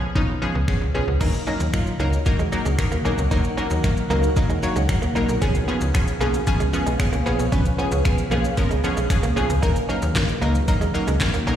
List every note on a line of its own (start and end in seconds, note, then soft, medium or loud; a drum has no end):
0.15 0.25 C#2 medium
0.15 0.34 F3 loud
0.15 0.34 B3 loud
0.15 0.34 C#4 medium
0.15 0.34 D#4 loud
0.15 kick loud
0.29 0.38 B1 medium
0.42 0.60 F3 medium
0.42 0.61 B3 medium
0.42 0.61 C#4 medium
0.42 0.61 G#4 medium
0.55 0.64 C#2 medium
0.68 0.87 F3 medium
0.68 0.87 B3 medium
0.68 0.87 C#4 medium
0.68 0.87 G#4 loud
0.68 finger snap loud
0.68 kick loud
0.81 0.91 C#2 loud
0.94 1.04 B1 medium
0.94 1.13 F3 medium
0.94 1.13 B3 medium
0.94 1.13 C#4 medium
0.94 1.13 G#4 medium
1.08 1.17 C#2 medium
1.21 1.39 D#2 loud
1.21 1.39 F#3 loud
1.21 1.39 A#3 loud
1.21 1.31 D#4 medium
1.21 1.40 D#4 loud
1.21 5.38 D#4 medium
1.21 5.38 F#4 medium
1.21 5.38 A#4 medium
1.21 1.40 A#4 loud
1.21 5.38 F#5 medium
1.21 kick loud
1.21 crash medium
1.21 shaker medium
1.34 muted clean electric guitar stroke soft
1.34 shaker medium
1.47 1.66 F#3 medium
1.47 1.66 A#3 medium
1.47 1.58 C#4 medium
1.47 1.66 D#4 medium
1.47 1.66 A#4 medium
1.47 shaker soft
1.60 1.70 D#2 medium
1.60 shaker medium
1.73 1.92 F#3 medium
1.73 1.92 A#3 medium
1.73 1.92 D#4 medium
1.73 1.92 F4 loud
1.73 finger snap loud
1.73 kick loud
1.73 shaker medium
1.87 shaker soft
1.99 2.18 C#2 medium
1.99 2.18 F#3 medium
1.99 2.18 A#3 medium
1.99 2.10 A#3 medium
1.99 2.19 D#4 medium
1.99 2.19 A#4 loud
1.99 shaker medium
2.13 shaker medium
2.26 2.45 F#3 loud
2.26 2.45 A#3 loud
2.26 2.45 D#4 medium
2.26 2.45 A#4 loud
2.26 kick loud
2.26 shaker medium
2.39 2.49 D#2 medium
2.39 2.50 G#3 medium
2.39 shaker soft
2.52 2.71 F#3 medium
2.52 2.71 A#3 medium
2.52 2.71 D#4 medium
2.52 2.71 A#4 medium
2.52 muted clean electric guitar stroke soft
2.52 shaker medium
2.65 2.75 C#2 medium
2.65 2.76 G#3 medium
2.65 shaker medium
2.78 2.97 F#3 medium
2.78 2.97 A#3 medium
2.78 2.97 D#4 medium
2.78 2.98 A#4 medium
2.78 finger snap loud
2.78 muted clean electric guitar stroke soft
2.78 kick loud
2.78 shaker medium
2.92 3.01 D#2 medium
2.92 3.02 A#3 medium
2.92 shaker medium
3.05 3.14 B1 loud
3.05 3.24 F#3 medium
3.05 3.24 A#3 medium
3.05 3.15 C#4 medium
3.05 3.24 D#4 medium
3.05 3.24 A#4 loud
3.05 shaker soft
3.18 3.27 C#2 medium
3.18 shaker medium
3.31 3.50 D#2 loud
3.31 3.50 F#3 loud
3.31 3.50 A#3 loud
3.31 3.42 D#4 medium
3.31 3.50 D#4 loud
3.31 3.50 A#4 loud
3.31 kick loud
3.31 shaker medium
3.44 muted clean electric guitar stroke soft
3.44 shaker medium
3.57 3.76 F#3 medium
3.57 3.76 A#3 medium
3.57 3.68 C#4 medium
3.57 3.76 D#4 medium
3.57 3.76 A#4 medium
3.57 shaker soft
3.70 3.80 D#2 medium
3.70 shaker medium
3.84 4.03 F#3 medium
3.84 4.03 A#3 medium
3.84 4.03 D#4 medium
3.84 4.03 A#4 loud
3.84 finger snap loud
3.84 kick loud
3.84 shaker medium
3.97 shaker medium
4.10 4.29 C#2 medium
4.10 4.29 F#3 medium
4.10 4.21 A#3 medium
4.10 4.29 A#3 medium
4.10 4.29 D#4 medium
4.10 4.29 A#4 loud
4.10 shaker medium
4.23 shaker medium
4.36 4.55 F#3 loud
4.36 4.55 A#3 loud
4.36 4.55 D#4 loud
4.36 4.55 A#4 loud
4.36 kick loud
4.36 shaker medium
4.50 4.59 D#2 medium
4.50 4.60 G#3 medium
4.50 shaker soft
4.63 4.82 F#3 medium
4.63 4.82 A#3 medium
4.63 4.82 D#4 medium
4.63 4.82 C#5 medium
4.63 muted clean electric guitar stroke soft
4.63 shaker medium
4.76 4.85 C#2 medium
4.76 4.86 G#3 medium
4.76 shaker medium
4.89 5.08 F#3 medium
4.89 5.08 A#3 medium
4.89 5.08 D#4 medium
4.89 5.08 A#4 medium
4.89 finger snap loud
4.89 muted clean electric guitar stroke soft
4.89 kick loud
4.89 shaker medium
5.02 5.12 D#2 medium
5.02 5.13 A#3 medium
5.02 shaker medium
5.15 5.25 A#1 medium
5.15 5.34 F#3 medium
5.15 5.34 A#3 medium
5.15 5.26 D#4 medium
5.15 5.34 D#4 medium
5.15 5.34 A#4 loud
5.15 shaker soft
5.29 5.38 B1 medium
5.29 shaker medium
5.42 5.61 C#2 loud
5.42 5.60 F3 loud
5.42 5.61 B3 loud
5.42 5.52 C#4 medium
5.42 9.59 C#4 medium
5.42 5.61 C#4 loud
5.42 9.59 G#4 medium
5.42 5.61 G#4 loud
5.42 9.59 B4 medium
5.42 9.59 F5 medium
5.42 kick loud
5.42 closed hi-hat medium
5.42 shaker medium
5.55 muted clean electric guitar stroke soft
5.55 closed hi-hat medium
5.55 shaker medium
5.68 5.87 F3 medium
5.68 5.78 B3 medium
5.68 5.87 B3 medium
5.68 5.87 C#4 medium
5.68 5.87 G#4 medium
5.68 shaker soft
5.81 5.91 C#2 medium
5.81 closed hi-hat medium
5.81 shaker medium
5.94 6.13 F3 medium
5.94 6.13 B3 medium
5.94 6.13 C#4 medium
5.94 6.13 G#4 medium
5.94 finger snap loud
5.94 kick loud
5.94 closed hi-hat medium
5.94 shaker medium
6.08 closed hi-hat medium
6.08 shaker medium
6.20 6.39 B1 medium
6.20 6.39 F3 medium
6.20 6.31 A#3 medium
6.20 6.39 B3 medium
6.20 6.39 C#4 medium
6.20 6.40 G#4 loud
6.20 shaker medium
6.34 closed hi-hat soft
6.34 shaker medium
6.47 6.66 F3 loud
6.47 6.66 B3 loud
6.47 6.66 C#4 loud
6.47 6.66 G#4 loud
6.47 kick loud
6.47 closed hi-hat medium
6.47 shaker medium
6.60 6.70 C#2 medium
6.60 6.71 G#3 medium
6.60 closed hi-hat soft
6.60 shaker soft
6.73 6.92 F3 medium
6.73 6.92 B3 medium
6.73 6.92 C#4 medium
6.73 6.92 G#4 medium
6.73 muted clean electric guitar stroke soft
6.73 shaker medium
6.87 6.96 B1 medium
6.87 6.97 G#3 medium
6.87 closed hi-hat medium
6.87 shaker medium
6.99 7.18 F3 medium
6.99 7.18 B3 medium
6.99 7.18 C#4 medium
6.99 7.19 G#4 loud
6.99 finger snap loud
6.99 muted clean electric guitar stroke soft
6.99 kick loud
6.99 closed hi-hat medium
6.99 shaker medium
7.13 7.22 C#2 loud
7.13 7.23 A#3 medium
7.13 closed hi-hat medium
7.13 shaker medium
7.26 7.35 A#1 loud
7.26 7.45 F3 medium
7.26 7.45 B3 medium
7.26 7.36 B3 medium
7.26 7.45 C#4 medium
7.26 7.45 G#4 loud
7.26 shaker soft
7.39 7.49 B1 medium
7.39 closed hi-hat medium
7.39 shaker medium
7.52 7.71 C#2 loud
7.52 7.71 F3 loud
7.52 7.71 B3 loud
7.52 7.63 C#4 medium
7.52 7.71 C#4 loud
7.52 7.71 B4 loud
7.52 kick loud
7.52 closed hi-hat medium
7.52 shaker medium
7.65 muted clean electric guitar stroke soft
7.65 closed hi-hat medium
7.65 shaker medium
7.78 7.97 F3 medium
7.78 7.89 B3 medium
7.78 7.97 B3 medium
7.78 7.97 C#4 medium
7.78 7.97 G#4 loud
7.78 shaker soft
7.92 8.01 C#2 loud
7.92 closed hi-hat medium
7.92 shaker medium
8.05 8.24 F3 medium
8.05 8.24 B3 medium
8.05 8.24 C#4 medium
8.05 8.24 G#4 loud
8.05 finger snap loud
8.05 kick loud
8.05 closed hi-hat medium
8.05 shaker medium
8.18 closed hi-hat medium
8.18 shaker soft
8.31 8.50 B1 loud
8.31 8.50 F3 medium
8.31 8.42 A#3 medium
8.31 8.50 B3 medium
8.31 8.50 C#4 medium
8.31 8.50 G#4 loud
8.31 shaker medium
8.45 closed hi-hat soft
8.45 shaker medium
8.57 8.76 F3 loud
8.57 8.76 B3 loud
8.57 8.76 C#4 loud
8.57 8.76 A#4 loud
8.57 kick loud
8.57 closed hi-hat medium
8.57 shaker medium
8.71 8.80 C#2 medium
8.71 8.81 G#3 medium
8.71 closed hi-hat soft
8.71 shaker soft
8.84 9.03 F3 medium
8.84 9.03 B3 medium
8.84 9.03 C#4 medium
8.84 9.03 G#4 loud
8.84 muted clean electric guitar stroke soft
8.84 shaker medium
8.97 9.06 B1 medium
8.97 9.07 G#3 medium
8.97 closed hi-hat soft
8.97 shaker medium
9.10 9.29 F3 medium
9.10 9.29 B3 medium
9.10 9.29 C#4 medium
9.10 9.29 G#4 medium
9.10 finger snap loud
9.10 muted clean electric guitar stroke soft
9.10 kick loud
9.10 closed hi-hat medium
9.10 shaker medium
9.23 9.33 C#2 loud
9.23 9.34 A#3 medium
9.23 closed hi-hat medium
9.23 shaker medium
9.36 9.46 B1 medium
9.36 9.55 F3 medium
9.36 9.55 B3 medium
9.36 9.47 C#4 medium
9.36 9.55 C#4 medium
9.36 9.55 G#4 medium
9.36 shaker soft
9.50 9.59 C#2 medium
9.50 closed hi-hat medium
9.50 shaker medium
9.62 9.82 D#2 loud
9.62 9.81 F#3 loud
9.62 9.82 A#3 loud
9.62 9.73 D#4 medium
9.62 11.56 D#4 medium
9.62 9.82 D#4 loud
9.62 11.56 F#4 medium
9.62 11.56 A#4 medium
9.62 9.82 A#4 loud
9.62 11.56 F#5 medium
9.62 kick loud
9.62 closed hi-hat medium
9.62 shaker medium
9.76 muted clean electric guitar stroke soft
9.76 closed hi-hat medium
9.76 shaker medium
9.89 10.08 F#3 medium
9.89 10.08 A#3 medium
9.89 9.99 C#4 medium
9.89 10.08 D#4 medium
9.89 10.08 A#4 medium
9.89 shaker soft
10.02 10.12 D#2 medium
10.02 closed hi-hat medium
10.02 shaker medium
10.15 10.34 F#3 medium
10.15 10.34 A#3 medium
10.15 10.34 D#4 medium
10.15 10.34 A#4 loud
10.15 kick loud
10.15 snare medium
10.15 clap loud
10.15 closed hi-hat medium
10.15 shaker medium
10.29 closed hi-hat medium
10.29 shaker soft
10.41 10.61 C#2 medium
10.41 10.60 F#3 medium
10.41 10.52 A#3 medium
10.41 10.60 A#3 medium
10.41 10.61 D#4 medium
10.41 10.61 A#4 loud
10.41 shaker medium
10.55 closed hi-hat soft
10.55 shaker medium
10.68 10.87 F#3 loud
10.68 10.87 A#3 loud
10.68 10.87 D#4 loud
10.68 10.87 A#4 loud
10.68 kick loud
10.68 closed hi-hat medium
10.68 shaker medium
10.81 10.91 D#2 medium
10.81 10.92 G#3 medium
10.81 closed hi-hat soft
10.81 shaker soft
10.94 11.13 F#3 medium
10.94 11.13 A#3 medium
10.94 11.13 D#4 medium
10.94 11.13 A#4 medium
10.94 muted clean electric guitar stroke soft
10.94 shaker medium
11.08 11.17 C#2 medium
11.08 11.18 G#3 medium
11.08 closed hi-hat medium
11.08 shaker medium
11.20 11.39 F#3 medium
11.20 11.39 A#3 medium
11.20 11.39 D#4 medium
11.20 11.40 A#4 medium
11.20 muted clean electric guitar stroke soft
11.20 kick loud
11.20 snare loud
11.20 clap loud
11.20 closed hi-hat medium
11.20 shaker medium
11.34 11.43 D#2 medium
11.34 11.44 A#3 medium
11.34 closed hi-hat medium
11.34 shaker medium
11.47 11.56 B1 loud
11.47 11.56 F#3 medium
11.47 11.56 A#3 medium
11.47 11.56 C#4 medium
11.47 11.56 D#4 medium
11.47 11.56 A#4 medium
11.47 shaker soft